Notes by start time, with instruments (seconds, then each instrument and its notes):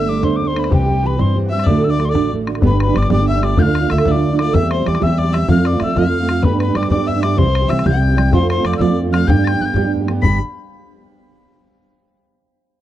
Already playing: upright bass G1, harp A4 C5 E5 F#5, fiddle E5, tin whistle E6
0.07 steel-string acoustic guitar G3 A3 B3 D4, harp D5, tin whistle D6
0.22 upright bass D2, steel-string acoustic guitar G3 A3 B3 D4, fiddle C5, harp C5, tin whistle C6, bodhran
0.36 steel-string acoustic guitar G3, tin whistle D6
0.41 steel-string acoustic guitar A3 B3 D4, bodhran
0.46 harp C5, fiddle C5, tin whistle C6
0.55 steel-string acoustic guitar A3 B3 D4, harp B4, tin whistle B5, bodhran
0.64 bodhran
0.68 upright bass C2, steel-string acoustic guitar C3 E3 G3 C4 G4, harp G4, bodhran
0.73 fiddle G4, tin whistle G5
0.88 steel-string acoustic guitar G3 C4 G4, bodhran
1.02 steel-string acoustic guitar E3 G3 C4 G4, harp B4, fiddle B4
1.07 tin whistle B5
1.17 upright bass G2, steel-string acoustic guitar C3 E3 G3 C4 G4, harp C5, fiddle C5, tin whistle C6, bodhran
1.35 steel-string acoustic guitar E3 G3 C4 G4, bodhran
1.46 fiddle E5, harp E5 F#5
1.52 steel-string acoustic guitar C4 G4, tin whistle E6
1.56 steel-string acoustic guitar G3, bodhran
1.64 upright bass D2, steel-string acoustic guitar D2 A2 D3, fiddle D5, harp D5, tin whistle D6, bodhran
1.68 steel-string acoustic guitar A3 D4 F#4
1.75 bodhran
1.84 steel-string acoustic guitar D3 A3 D4 F#4, tin whistle E6, bodhran
1.89 harp D5, fiddle D5, tin whistle D6
1.97 steel-string acoustic guitar D3 A3 D4 F#4, bodhran
2.05 harp D5, tin whistle C6
2.09 fiddle D5, tin whistle D6
2.14 upright bass A1, steel-string acoustic guitar D2 A2 D3 A3 D4 F#4, bodhran
2.31 steel-string acoustic guitar D3 A3 D4 F#4, bodhran
2.47 steel-string acoustic guitar D3 A3 D4 F#4, bodhran
2.55 bodhran
2.61 upright bass G1, steel-string acoustic guitar G3 B3 D4, harp B4, fiddle B4, bodhran
2.65 steel-string acoustic guitar G4, tin whistle B5
2.70 steel-string acoustic guitar D4 G4
2.74 steel-string acoustic guitar B3, harp B4
2.80 fiddle B4, tin whistle B5, bodhran
2.86 steel-string acoustic guitar B3 D4 G4
2.93 upright bass G1, steel-string acoustic guitar G3 B3 D4, harp D5, fiddle D5, bodhran
2.97 steel-string acoustic guitar G4, tin whistle D6
3.03 bodhran
3.08 upright bass G1, steel-string acoustic guitar G3 B3 D4, harp D5, fiddle D5, bodhran
3.13 steel-string acoustic guitar G4, tin whistle D6
3.19 steel-string acoustic guitar B3 D4 G4
3.28 harp E5, fiddle E5, tin whistle E6, bodhran
3.34 steel-string acoustic guitar B3 D4 G4
3.40 steel-string acoustic guitar G3 B3 D4 G4, harp D5, fiddle D5, tin whistle D6, bodhran
3.56 steel-string acoustic guitar D2 A2 D3 A3 D4 F4, upright bass D2, harp F5, fiddle F5, tin whistle G6, bodhran
3.63 steel-string acoustic guitar D4 F4, tin whistle F6
3.67 steel-string acoustic guitar D3 A3
3.75 bodhran
3.81 steel-string acoustic guitar D3 A3 D4 F4
3.89 upright bass D2, steel-string acoustic guitar D3 A3 D4 F4, fiddle E5, harp E5, tin whistle E6, bodhran
3.98 bodhran
4.05 steel-string acoustic guitar D2 A2 D3 A3 D4 F4, upright bass D2, harp D5, fiddle D5, tin whistle E6, bodhran
4.11 steel-string acoustic guitar F4, tin whistle D6
4.16 steel-string acoustic guitar D3 A3 D4, harp D5
4.24 bodhran
4.28 steel-string acoustic guitar F4, harp D5
4.33 steel-string acoustic guitar D3 A3 D4
4.38 steel-string acoustic guitar D3 A3 D4, harp D5, fiddle D5, tin whistle D6, bodhran
4.42 steel-string acoustic guitar F4
4.52 upright bass E2, steel-string acoustic guitar E3 G3 C4 G4, fiddle E5, harp E5, tin whistle E6, bodhran
4.61 steel-string acoustic guitar G3 C4 G4
4.71 fiddle C5, harp C5, tin whistle C6, bodhran
4.76 steel-string acoustic guitar G3 C4 G4
4.84 upright bass E2, steel-string acoustic guitar E3 G3 C4 G4, harp D5, fiddle D5, tin whistle D6, bodhran
4.95 bodhran
5.00 upright bass E2, steel-string acoustic guitar E3 G3 C4 G4, harp E5, fiddle E5, tin whistle E6, bodhran
5.07 steel-string acoustic guitar G3 C4 G4
5.17 harp D5, fiddle D5, tin whistle D6, bodhran
5.24 steel-string acoustic guitar C4 G4
5.29 steel-string acoustic guitar G3, fiddle E5
5.33 steel-string acoustic guitar E3 G3 C4 G4, harp E5, tin whistle E6, bodhran
5.48 upright bass F2, steel-string acoustic guitar F3 A3 C4 F4, fiddle F5, harp F5, tin whistle F6, bodhran
5.57 steel-string acoustic guitar A3 C4 F4
5.65 harp D5, fiddle D5, tin whistle D6, bodhran
5.73 steel-string acoustic guitar A3 C4 F4
5.80 upright bass F2, steel-string acoustic guitar F3 A3 C4, harp E5, tin whistle E6, bodhran
5.85 steel-string acoustic guitar F4
5.94 upright bass F2, steel-string acoustic guitar F3 A3 C4, fiddle F5, harp F5, tin whistle F6, bodhran
5.99 steel-string acoustic guitar F4
6.09 steel-string acoustic guitar A3 C4
6.14 bodhran
6.20 steel-string acoustic guitar A3 C4 F4
6.27 steel-string acoustic guitar F3 A3 C4 F4, bodhran
6.42 upright bass G2, steel-string acoustic guitar G3 B3 D4 G4, fiddle B4, harp B4, tin whistle B5, bodhran
6.51 steel-string acoustic guitar B3 D4 G4
6.59 fiddle B4, harp B4, tin whistle B5, bodhran
6.68 steel-string acoustic guitar B3 D4 G4
6.74 upright bass G2, steel-string acoustic guitar G3 B3 D4 G4, harp D5, fiddle D5, tin whistle D6, bodhran
6.83 bodhran
6.89 upright bass G2, steel-string acoustic guitar G3 B3 D4 G4, fiddle D5, harp D5, tin whistle D6, bodhran
6.96 steel-string acoustic guitar B3 G4
7.06 harp E5, fiddle E5, tin whistle E6, bodhran
7.14 steel-string acoustic guitar B3 D4 G4
7.21 steel-string acoustic guitar G3 B3 D4, harp D5, fiddle D5, tin whistle D6, bodhran
7.25 steel-string acoustic guitar G4
7.36 upright bass C2, steel-string acoustic guitar C3 E3 G3 C4 G4, harp C5, fiddle C5, tin whistle C6, bodhran
7.48 steel-string acoustic guitar G3 C4
7.55 bodhran
7.61 steel-string acoustic guitar G3 C4 G4
7.68 upright bass C2, steel-string acoustic guitar E3 G3 C4, fiddle E5, harp E5, tin whistle E6, bodhran
7.72 steel-string acoustic guitar G4
7.79 bodhran
7.83 upright bass C2, steel-string acoustic guitar C3 E3 G3 C4, fiddle G5, harp G5, tin whistle G6, bodhran
7.88 steel-string acoustic guitar G4
7.94 steel-string acoustic guitar C4 G4
7.98 steel-string acoustic guitar G3
8.03 bodhran
8.09 steel-string acoustic guitar G3 C4 G4
8.16 steel-string acoustic guitar E3 G3 C4 G4, harp D5, bodhran
8.32 upright bass F2, steel-string acoustic guitar F3 A3 C4 F4, harp C5, fiddle C5, tin whistle C6, bodhran
8.41 steel-string acoustic guitar A3 C4 F4
8.50 fiddle C5, harp C5, tin whistle C6, bodhran
8.58 steel-string acoustic guitar A3 F4
8.62 upright bass F2, steel-string acoustic guitar F3 C4, fiddle D5, harp D5, bodhran
8.66 steel-string acoustic guitar A3 F4, tin whistle D6
8.73 bodhran
8.78 upright bass F2, steel-string acoustic guitar F3 C4, harp D5, fiddle D5, tin whistle E6, bodhran
8.82 steel-string acoustic guitar A3 F4, tin whistle D6
8.89 steel-string acoustic guitar A3 C4 F4
9.00 steel-string acoustic guitar F4, bodhran
9.06 steel-string acoustic guitar A3 C4
9.11 steel-string acoustic guitar F3 A3 C4, harp F5, fiddle F5, tin whistle F6, bodhran
9.15 steel-string acoustic guitar F4
9.27 upright bass G2, steel-string acoustic guitar G3 B3 D4 G4, harp G5, fiddle G5, tin whistle G6, bodhran
9.36 steel-string acoustic guitar B3 D4 G4
9.44 tin whistle G6 A6, bodhran
9.53 steel-string acoustic guitar B3 D4 G4
9.60 upright bass G2, steel-string acoustic guitar G3 B3 D4 G4, tin whistle F#6
9.65 tin whistle G6
9.74 upright bass G2, steel-string acoustic guitar G3 B3 D4 G4, bodhran
9.84 steel-string acoustic guitar B3 D4 G4
9.95 bodhran
10.01 steel-string acoustic guitar B3 D4 G4
10.07 steel-string acoustic guitar G3 B3 D4 G4, bodhran
10.22 upright bass G1, steel-string acoustic guitar G3 B3 D4, fiddle B5, harp B5, tin whistle B6, bodhran
10.27 steel-string acoustic guitar G4